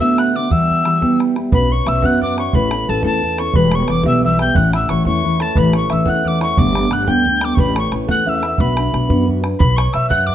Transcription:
Already playing: B4 D5
0.00 D2 A2 D3 A3 B3 F#4 E5 E6
0.18 F#5 F#6, bodhran
0.34 D3 A3 B3 F#4 D5 D6
0.49 E3 G3 B3 G4 E5 E6, bodhran
0.70 bodhran
0.84 E3 G3 B3 G4, bodhran
1.01 E3 G3 B3 G4, bodhran
1.20 bodhran
1.36 G3 B3 G4, bodhran
1.52 B1 B3 C#4 F#4 B4 B5, bodhran
1.70 C#4 F#4 B4 C#5 C#6
1.85 B1 B3 C#4 F#4 B4 E5 E6, bodhran
2.02 F#2 B3 C#4 F#4 B4 F#5 F#6, bodhran
2.21 C#4 F#4 B4 D5 D6, bodhran
2.37 C#4 F#4 B4 C#5 C#6, bodhran
2.53 A1 A2 A3 C#4 E4 A4 B4 B5, bodhran
2.71 C#4 A4, bodhran
2.88 A1 A3 C#4 E4 A4 A5
3.03 E2 A2 A3 C#4 E4 A4 A5, bodhran
3.22 A3 C#4 E4 A4, bodhran
3.37 C#4 E4 A4 C#5 C#6, bodhran
3.54 E1 E3 G3 B3 G4 B4 B5, bodhran
3.71 G3 B3 G4 C#5 C#6, bodhran
3.88 E1 E3 G3 B3 G4 D5 D6, bodhran
4.03 B1 E3 G3 B3 G4 E5, bodhran
4.08 E6
4.22 E3 G3 B3 G4 E5 E6, bodhran
4.39 G3 B3 G4 G5 G6, bodhran
4.54 A1 A2 E3 A3 C#4 E4 F#5 F#6, bodhran
4.73 A3 E4 E5 E6, bodhran
4.89 A1 E3 A3 C#4 E4 C#5 C#6, bodhran
5.05 E2 A2 E3 A3 C#4 E4 C#5 C#6, bodhran
5.23 E3 A3 C#4 E4 B4, bodhran
5.40 A3 C#4 E4 A4 A5, bodhran
5.55 A1 A2 E3 A3 C#4 E4 B4 B5, bodhran
5.73 A3 C#4 E4 C#5 C#6, bodhran
5.90 A1 E3 A3 C#4 E4 E5 E6, bodhran
6.06 E2 A2 E3 A3 C#4 E4 F#5 F#6, bodhran
6.24 E3 A3 C#4 E4 D5 D6, bodhran
6.41 A3 C#4 E4 C#5 C#6, bodhran
6.57 G1 G2 D3 G3 A3 B3 D4 D5 D6, bodhran
6.75 G3 A3 B3 D4, bodhran
6.90 G1 G3 A3 B3 D4 F#5 F#6, bodhran
7.08 D2 G2 D3 G3 A3 B3 D4 G5 G6, bodhran
7.26 G3 A3 B3 D4, bodhran
7.41 G3 A3 B3 D4 D5 D6, bodhran
7.55 A1 A2 A3 B4 C#6, bodhran
7.60 C#4 E4 A4 B5
7.76 A4 C#5 C#6, bodhran
7.92 A1 A3 C#4 E4 A4, bodhran
8.07 E2 A2 A3 C#4 E4 A4 F#5 F#6, bodhran
8.25 A3 C#4 E4 A4 E5 E6, bodhran
8.37 E5
8.41 C#4 E4 A4, bodhran
8.48 E5
8.57 B1 B3 D4 F#4 B4 B5, bodhran
8.75 D4 F#4 B4, bodhran
8.92 B1 B3 D4 F#4 B4, bodhran
9.09 F#2 B3 D4 F#4 B4, bodhran
9.25 B3 D4 F#4 B4, bodhran
9.41 D4 F#4 B4, bodhran
9.59 B1 B4 B5, bodhran
9.77 C#5 C#6, bodhran
9.93 B1 E5 E6, bodhran
10.10 F#2 F#5 F#6, bodhran
10.27 D5 D6, bodhran

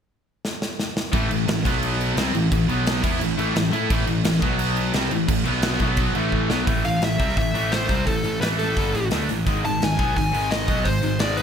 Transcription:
0.45 snare
0.62 snare
0.80 snare
0.97 snare
1.12 A1 A2 E3 A3, kick, crash
1.30 A1 A2 E3, crash
1.47 A1 A2 E3, snare, crash
1.64 B1 B2 F#3 B3, kick, crash
1.83 crash
2.01 crash
2.16 C2 C3 G3 C4, snare, crash
2.34 A1 A2 E3, crash
2.52 A1 A2 E3, kick, crash
2.68 B1 B2 F#3 B3, crash
2.87 snare, crash
3.03 E2 E3 B3 E4, kick, crash
3.20 A1 A2 E3, crash
3.37 A1 A2 E3 A3, crash
3.54 A1 A2 E3, snare, crash
3.71 A2 A3 E4 A4, crash
3.89 A1 A2 E3 A3, kick, crash
4.06 A1 A2 E3, crash
4.24 A1 A2 E3, snare, crash
4.40 B1 B2 F#3 B3, kick, crash
4.59 crash
4.77 crash
4.93 C2 C3 G3 C4, snare, crash
5.11 A1 A2 E3, crash
5.27 A1 A2 E3, kick, crash
5.44 B1 B2 F#3 B3, crash
5.62 snare, crash
5.79 B1 B2 F#3 B3, kick, crash
5.97 kick, crash
6.14 A1 A2 E3 A3, crash
6.32 kick
6.49 B1 B2 F#3 B3, snare
6.66 A1 A2 E3 A3, kick, open hi-hat
6.84 A1 A2 E3 F5, open hi-hat
7.01 A1 A2 E3 E5, snare, open hi-hat
7.19 C2 C3 G3 C4, kick, open hi-hat
7.29 snare
7.36 A1 A2 E3 E5, kick, open hi-hat
7.54 A1 A2 E3 A3, open hi-hat
7.72 C5, snare, open hi-hat
7.88 C2 C3 G3 C4, kick, open hi-hat
8.07 A1 A2 E3 A4, kick, open hi-hat
8.24 A1 A2 E3, open hi-hat
8.41 A1 A2 E3 A3 B4, snare, open hi-hat
8.59 A4, open hi-hat
8.76 G1 G2 D3 G3, kick, open hi-hat
8.94 A1 A2 E3, open hi-hat
9.11 D2 D3 A3 D4, snare, open hi-hat
9.28 A1 A2 E3, open hi-hat
9.46 G#1 G#2 D#3 G#3, kick, open hi-hat
9.64 G#1 G#2 D#3 A5, open hi-hat
9.80 G#1 G#2 D#3 G#5, snare, open hi-hat
9.97 B1 B2 F#3 B3, kick, open hi-hat
10.15 G#1 G#2 D#3 G#5, kick, open hi-hat
10.32 G#1 G#2 D#3 G#3, open hi-hat
10.51 D#5, snare, open hi-hat
10.67 B1 B2 F#3 B3, kick, open hi-hat
10.84 G#1 G#2 D#3 C5, kick, open hi-hat
11.02 G#1 G#2 D#3, open hi-hat
11.19 G#1 G#2 D#3 G#3 D5, snare, open hi-hat
11.30 snare
11.37 C5, open hi-hat

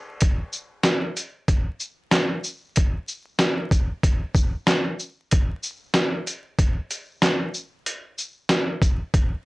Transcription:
0.21 kick, closed hi-hat
0.53 shaker
0.84 snare, clap, closed hi-hat
1.17 closed hi-hat, shaker
1.48 kick, closed hi-hat
1.80 shaker
2.12 snare, clap, closed hi-hat
2.44 shaker
2.76 kick, closed hi-hat
3.08 shaker
3.39 snare, clap, closed hi-hat
3.71 kick, closed hi-hat, shaker
4.03 kick, closed hi-hat
4.35 kick, shaker
4.67 snare, clap, closed hi-hat
4.99 shaker
5.31 kick, closed hi-hat
5.63 shaker
5.94 snare, clap, closed hi-hat
6.27 closed hi-hat, shaker
6.59 kick, closed hi-hat
6.91 closed hi-hat, shaker
7.22 snare, clap, closed hi-hat
7.54 shaker
7.86 closed hi-hat
8.18 shaker
8.49 snare, clap, closed hi-hat
8.82 kick, closed hi-hat, shaker
9.14 kick, closed hi-hat

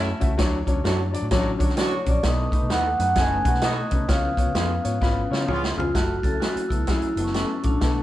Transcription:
Already playing: F#2 F#3 A3 C#4 E4
0.20 C#2 A3 C#4 F#4 E5, kick, closed hi-hat
0.38 D2 D3 F#3 D4 C#5, kick, snare, closed hi-hat
0.67 F#3 C#4 D4 C#5, kick, closed hi-hat
0.75 D2
0.84 F#2 F#3 C#4 D4 F#4 A4 C#5, snare, closed hi-hat
1.13 F#3 D4 D5, closed hi-hat
1.22 A2
1.31 A1 F#3 C#4 D4 F#4 C#5, kick, snare, closed hi-hat
1.58 D3 F#3 D4 F#4 C#5, kick, closed hi-hat
1.69 snare
1.76 F#3 C#4 D4 F#4 A4 C#5, snare, closed hi-hat
1.81 C#5 C#6
2.04 A#1 F#3 C#4 D4 C#5, kick, closed hi-hat
2.09 D5 D6
2.23 B1 D#3 A3 B3 D#4 B4 D#5 D#6, kick, snare, closed hi-hat
2.52 A3 D#4 B4, kick, closed hi-hat
2.62 B1
2.69 D#2 A3 B3 D#4 A4 B4 F#5 F#6, snare, closed hi-hat
2.99 F#2 A3 D#4 B4 F#5 F#6, closed hi-hat
3.15 F#1 A3 B3 C#4 D#4 F#4 B4 G#5 G#6, kick, snare, closed hi-hat
3.44 B2 A3 B3 D#4 F#4 B4 F#5 F#6, kick, closed hi-hat
3.54 snare
3.61 A3 B3 D#4 F#4 A4 B4 D#5 D#6, snare, closed hi-hat
3.91 C2 A3 C#4 D#4 B4, kick, closed hi-hat
4.09 C#2 F3 B3 C#4 F4 C#5 F5 F6, kick, snare, closed hi-hat
4.37 B3 F4 C#5, kick, closed hi-hat
4.47 C#2
4.54 F2 B3 F4 G#4 B4, snare, closed hi-hat
4.83 G#2 B3 F4 C#5, closed hi-hat
5.01 G#1 B3 C#4 F4 B4, kick, snare
5.30 C#3 B3 C#4 F4 C#5, snare
5.47 C#2 B3 C#4 F4 G#4 C#5, mid tom
5.51 F4
5.64 snare
5.76 C#2 B3 C#4 F4 G#4 F6, floor tom
5.94 F#1 F#3 A3 E4 F#4 A4 F#6, kick, snare, closed hi-hat
6.23 C#2 F#3 C#4 E4 A4 A6, kick, closed hi-hat
6.40 F#3 C#4 E4 F#4 G#4 A4 F#6, snare, closed hi-hat
6.56 muted fingered electric bass stroke, closed hi-hat
6.69 C#2 F#3 B3 E4 A4 E6, kick, closed hi-hat
6.86 F#3 C#4 E4 G#4 E6, kick, snare, closed hi-hat
6.91 E4
7.02 muted fingered electric bass stroke, closed hi-hat
7.16 F#1 F#3 B3 E4 A4, closed hi-hat
7.24 C#4 C#6, snare
7.34 F#3 B3 C#4 E4 A4 C#6, snare, closed hi-hat
7.63 A1 F#3 C#4 E4 A4 D6, kick, closed hi-hat
7.67 D4
7.73 A#1
7.80 B1 D3 A3 B3 A4, kick, snare, closed hi-hat

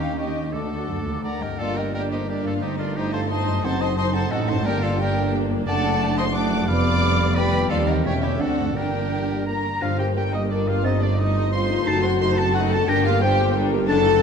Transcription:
Already playing: D#2 D#3 C#4 D#4 G4 C#5 D#5
0.00 F5 C#6
0.18 D#4 G4 C#5 D#5 C#6
0.27 G4
0.36 C#4
0.44 D#4
0.53 D2 D3 A3 D4 F#4 A4 D6
0.62 A3
0.70 A4
0.79 D5
0.88 F#2 A4
0.97 A5
1.05 D#2 D6
1.14 A5
1.22 D2 A4 A#4 D5 F#5 A#5
1.32 D5
1.40 C2 G2 G4 A4 A#4 D#5 G5
1.45 A#3
1.49 A3 G4
1.53 D4 D5
1.58 G1 G2 A#3 D4 F4 A4 D5 F5
1.76 G4 A#4 D#5 G5
1.93 A#3 D4 G4 A#4 D5 G5
2.10 D#4 G4 C5 D#5
2.27 A#3 D4 G4 A#4 D5
2.43 G2 F4 A4 D5 F5
2.48 C4
2.52 A4
2.57 D#5
2.61 G1 G2 A3 D#4 G4 C5 D#5
2.78 D4 F4 A#4 D5
2.96 A3 D#4 G4 C5 D#5
3.12 A4 C5 F5 A5
3.29 A3 D#4 C5 D#5 A5 C6
3.45 F#2
3.49 C4
3.54 A4
3.58 D#5
3.62 F#1 F#2 C4 D#4 A4 C5 F#5 A5
3.81 C5 D#5 A5 C6
3.96 C4 D#4 C5 D#5 A5 C6
4.13 A4 C5 F#5 A5
4.30 A1 A2 C4 D#4 F#4 A4 D#5 F#5
4.47 G2 A4 C5 F#5 A5
4.52 D4
4.56 A#4
4.61 G1 D5 G5
4.65 G1 G2 A#3 D4 G4 A#4 D5
4.81 F4 A4 D5 F5
4.99 A#3 D4 G4 A#4 D5 G5
5.49 F#2
5.54 D4
5.58 A4
5.63 F#1 D4 D5
5.67 F#1 F#2 A3 D4 A4 D5 F#5 A5
6.17 C5 D#5 A5 C6
6.34 A3 D4 D5 F#5 A5 D6
6.50 F2
6.55 D4
6.59 G4
6.64 B4
6.68 F1 F2 G3 B3 D5 F5 B5 D6
7.36 G3 B3 B4 D5 G5 B5
7.52 D#3
7.56 C4
7.61 G4
7.69 D#2 G3 C4 F4 A4 D5 F5
7.86 E3 G4 A#4 D#5 G5
7.91 C#4
7.95 E4
8.00 A4
8.04 E1 E2 A3 C#4 G4 C#5 E5 G5
8.22 D3 A3 E4 G4 C#5 E5
8.26 C4
8.31 D#4
8.35 D2 C4 D4 A4 D5
8.39 D2 C4 D4 F#4 A4 F#5
8.57 G2
8.62 A#3
8.66 D4
8.71 G1 D4 G4 D5
8.75 G1 G2 A#3 G4 A#4 G5
9.46 A#4 A#5
9.81 G1 G2 G3 D4 F4 C5 F5 A#6
9.91 A#3
9.99 A#3 D4 G4 G5
10.07 G4
10.15 G3 D4 G4 A#4 G5
10.24 D5
10.32 A#3 D#4 G4 D#5 G5
10.41 D5
10.49 G3 D4 A#4 D5
10.58 G4
10.66 A#3 D4 F4 G4 F5
10.76 A#3
10.84 G2 G3 C4 D#4 C5 D#5 A6
10.92 A3
11.01 A3 D4 D#4 D5
11.09 C5
11.18 G3 C4 D#4 A4 D#5
11.27 D#5
11.36 A3 D#4 C6
11.52 G3 C4 F4 A4 C5 C6
11.69 A3 D#4
11.77 A3
11.86 F#1 F#2 A3 D#4 F#4 A4 A5 C7
11.95 A3
12.02 C4 D#4 F#4 C5 C6
12.11 C5
12.20 A3 D#4 A4 C5 C6
12.28 D#5
12.36 C4 F#4 A4 A5 C6
12.45 D#5
12.53 A3 D#4 F#4 A4 F#5
12.62 C5
12.71 C4 D#4 F#4 A4 A5
12.79 A3
12.87 G1 G2 G3 D4 G4 A#4 G5 A#6
12.97 A#3
13.05 A#3 D4 F4 G4 F5
13.13 D5
13.21 G3 D4 G4 A#4 C5 G5
13.29 D5
13.38 A#3 G4 D6
13.46 D5
13.55 G3 D4 A#4
13.63 D5
13.72 A#3 D4 G4
13.81 A#3
13.88 F#1 F#2 F#3 D4 A4 A5 A6
13.98 A3
14.05 A3 D4 F#4
14.14 D5

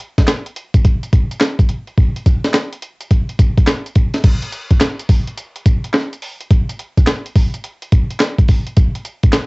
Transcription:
0.00 closed hi-hat
0.18 kick, snare, closed hi-hat
0.28 snare, clap, closed hi-hat
0.46 closed hi-hat
0.56 closed hi-hat
0.74 kick, closed hi-hat
0.85 kick, closed hi-hat
1.03 closed hi-hat
1.13 kick, closed hi-hat
1.31 closed hi-hat
1.41 snare, clap, closed hi-hat
1.59 kick, closed hi-hat
1.69 closed hi-hat
1.87 closed hi-hat
1.98 kick, closed hi-hat
2.16 closed hi-hat
2.26 kick, closed hi-hat
2.44 snare, closed hi-hat
2.54 snare, clap, closed hi-hat
2.73 closed hi-hat
2.82 closed hi-hat
3.01 closed hi-hat
3.11 kick, closed hi-hat
3.29 closed hi-hat
3.39 kick, closed hi-hat
3.58 kick, closed hi-hat
3.67 snare, clap, closed hi-hat
3.86 closed hi-hat
3.95 kick, closed hi-hat
4.14 snare, closed hi-hat
4.24 kick, closed hi-hat, crash
4.42 closed hi-hat
4.52 closed hi-hat
4.71 kick, closed hi-hat
4.80 snare, clap, closed hi-hat
4.99 closed hi-hat
5.09 kick, open hi-hat
5.27 closed hi-hat
5.37 closed hi-hat
5.56 closed hi-hat
5.66 kick, closed hi-hat
5.84 closed hi-hat
5.93 snare, clap, closed hi-hat
6.13 closed hi-hat
6.22 open hi-hat
6.41 closed hi-hat
6.51 kick, closed hi-hat
6.69 closed hi-hat
6.79 closed hi-hat
6.97 kick, closed hi-hat
7.07 snare, clap, closed hi-hat
7.26 closed hi-hat
7.35 kick, open hi-hat
7.54 closed hi-hat
7.64 closed hi-hat
7.82 closed hi-hat
7.92 kick, closed hi-hat
8.10 closed hi-hat
8.20 snare, clap, closed hi-hat
8.38 kick, closed hi-hat
8.48 kick, open hi-hat
8.66 closed hi-hat
8.76 kick, closed hi-hat
8.95 closed hi-hat
9.05 closed hi-hat
9.23 kick, closed hi-hat
9.33 snare, clap, closed hi-hat

